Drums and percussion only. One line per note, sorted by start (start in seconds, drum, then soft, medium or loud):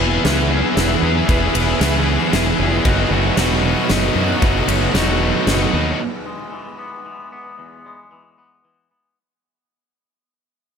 0.25 snare loud
0.25 ride medium
0.77 snare medium
0.77 ride medium
1.29 kick loud
1.29 ride medium
1.55 ride medium
1.81 snare medium
1.81 ride medium
2.33 snare medium
2.33 ride medium
2.85 kick loud
2.85 ride medium
3.37 snare medium
3.37 ride medium
3.89 snare medium
3.89 ride medium
4.42 kick loud
4.42 ride medium
4.68 ride medium
4.95 snare medium
4.95 ride medium
5.47 snare medium
5.47 ride medium